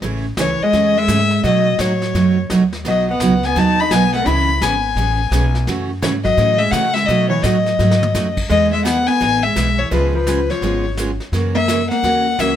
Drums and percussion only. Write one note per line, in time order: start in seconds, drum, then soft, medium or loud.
0.02 brush sweep medium
0.02 snare soft
0.37 snare medium
0.37 hi-hat pedal medium
0.73 brush sweep soft
0.73 snare soft
1.08 snare medium
1.08 hi-hat pedal medium
1.31 snare soft
1.44 brush sweep soft
1.44 snare soft
1.79 snare medium
1.79 hi-hat pedal medium
2.02 snare soft
2.15 brush sweep soft
2.15 snare soft
2.50 snare medium
2.50 hi-hat pedal medium
2.73 snare soft
2.85 brush sweep medium
2.85 snare soft
3.20 snare medium
3.20 hi-hat pedal medium
3.43 snare soft
3.56 brush sweep soft
3.56 snare soft
3.91 snare medium
3.91 hi-hat pedal medium
4.13 snare soft
4.26 brush sweep medium
4.26 snare soft
4.62 snare medium
4.62 hi-hat pedal medium
4.97 brush sweep medium
4.97 snare soft
5.32 snare medium
5.32 hi-hat pedal medium
5.55 snare soft
5.67 brush sweep soft
5.67 snare soft
6.02 snare medium
6.02 hi-hat pedal medium
6.25 kick medium
6.25 snare soft
6.37 brush sweep soft
6.37 snare soft
6.72 snare medium
6.72 hi-hat pedal medium
6.95 snare soft
7.08 brush sweep medium
7.08 snare soft
7.43 snare medium
7.43 hi-hat pedal medium
7.66 snare soft
7.79 snare soft
7.91 snare medium
8.03 mid tom medium
8.15 snare medium
8.15 hi-hat pedal medium
8.37 kick medium
8.37 crash medium
8.50 brush sweep medium
8.50 snare soft
8.85 snare medium
8.85 hi-hat pedal medium
9.08 snare soft
9.21 brush sweep soft
9.21 snare soft
9.56 snare medium
9.56 hi-hat pedal medium
9.91 brush sweep medium
9.91 snare soft
10.27 snare medium
10.27 hi-hat pedal medium
10.50 snare soft
10.62 brush sweep soft
10.62 snare soft
10.97 snare medium
10.97 hi-hat pedal medium
11.20 snare soft
11.33 brush sweep medium
11.33 snare soft
11.68 snare medium
11.68 hi-hat pedal medium
11.91 snare soft
12.04 brush sweep soft
12.04 snare soft
12.39 snare medium
12.39 hi-hat pedal medium